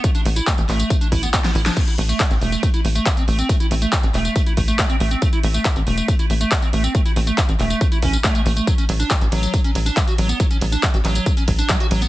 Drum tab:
CC |----------------|x---------------|----------------|----------------|
RD |----------------|----------------|----------------|----------------|
HH |xxoxxxoxxxoxxxox|xxoxxxoxxxoxxxox|xxoxxxoxxxoxxxox|xxoxxxoxxxoxxxox|
TB |xx-xxx-xxx-xxx-x|xx-xxx-xxx-xxx-x|xx-xxx-xxx-xxx-x|xx-xxx-xxx-xxx-x|
CP |----x-x-----x---|----x-------x---|----x-x-----x---|----x-------x---|
SD |-------------o-o|----------------|----------------|----------------|
BD |o---o---o-o-o---|o---o---o---o---|o---o---o-o-o---|o---o---o---o---|

CC |----------------|----------------|----------------|
RD |----------------|--x---x---x---x-|--x---x---x---x-|
HH |xxoxxxoxxxoxxxox|xxoxxxoxxxoxxxox|xxoxxxoxxxoxxxox|
TB |xx-xxx-xxx-xxx-x|xx-xxx-xxx-xxx-x|xx-xxx-xxx-xxx-x|
CP |----x-x-----x---|----x-------x---|----x-x-----x---|
SD |----------------|----------------|----------------|
BD |o---o---o-o-o---|o---o---o---o---|o---o---o-o-o---|